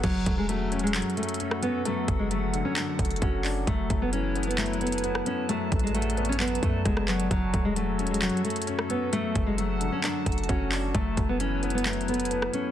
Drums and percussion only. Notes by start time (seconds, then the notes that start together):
0.04 kick, closed hi-hat, crash
0.26 kick, closed hi-hat
0.49 closed hi-hat
0.72 closed hi-hat
0.79 closed hi-hat
0.87 closed hi-hat
0.94 clap, closed hi-hat
1.02 closed hi-hat
1.10 closed hi-hat
1.17 closed hi-hat
1.23 closed hi-hat
1.29 closed hi-hat
1.34 closed hi-hat
1.40 closed hi-hat
1.51 cross-stick
1.63 closed hi-hat
1.85 closed hi-hat
2.08 kick, closed hi-hat
2.31 closed hi-hat
2.54 closed hi-hat
2.76 clap, closed hi-hat
2.99 kick, closed hi-hat
3.05 closed hi-hat
3.11 closed hi-hat
3.16 closed hi-hat
3.22 kick, closed hi-hat
3.44 clap, open hi-hat
3.67 kick, closed hi-hat
3.90 kick, closed hi-hat
4.13 closed hi-hat
4.36 closed hi-hat
4.43 closed hi-hat
4.51 closed hi-hat
4.58 clap, closed hi-hat
4.66 closed hi-hat
4.73 closed hi-hat
4.81 closed hi-hat
4.87 closed hi-hat
4.92 closed hi-hat
4.98 closed hi-hat
5.04 closed hi-hat
5.15 cross-stick
5.26 closed hi-hat
5.49 closed hi-hat
5.72 kick, closed hi-hat
5.79 closed hi-hat
5.87 closed hi-hat
5.95 closed hi-hat
6.02 closed hi-hat
6.10 closed hi-hat
6.17 closed hi-hat
6.25 closed hi-hat
6.32 closed hi-hat
6.40 clap, closed hi-hat
6.48 closed hi-hat
6.55 closed hi-hat
6.63 kick, closed hi-hat
6.85 kick, cross-stick, closed hi-hat
6.97 cross-stick
7.08 clap, closed hi-hat, open hi-hat
7.20 closed hi-hat
7.31 kick, closed hi-hat
7.54 kick, closed hi-hat
7.76 closed hi-hat
7.99 closed hi-hat
8.07 closed hi-hat
8.14 closed hi-hat
8.22 clap, closed hi-hat
8.29 closed hi-hat
8.37 closed hi-hat
8.45 closed hi-hat
8.50 closed hi-hat
8.56 closed hi-hat
8.62 closed hi-hat
8.67 closed hi-hat
8.79 cross-stick
8.90 closed hi-hat
9.13 closed hi-hat
9.35 kick, closed hi-hat
9.58 closed hi-hat
9.81 closed hi-hat
10.04 clap, closed hi-hat
10.26 kick, closed hi-hat
10.32 closed hi-hat
10.38 closed hi-hat
10.43 closed hi-hat
10.49 kick, closed hi-hat
10.72 clap, open hi-hat
10.95 kick, closed hi-hat
11.17 kick, closed hi-hat
11.40 closed hi-hat
11.63 closed hi-hat
11.70 closed hi-hat
11.78 closed hi-hat
11.86 clap, closed hi-hat
11.93 closed hi-hat
12.01 closed hi-hat
12.08 closed hi-hat
12.14 closed hi-hat
12.20 closed hi-hat
12.25 closed hi-hat
12.31 closed hi-hat
12.42 cross-stick
12.53 closed hi-hat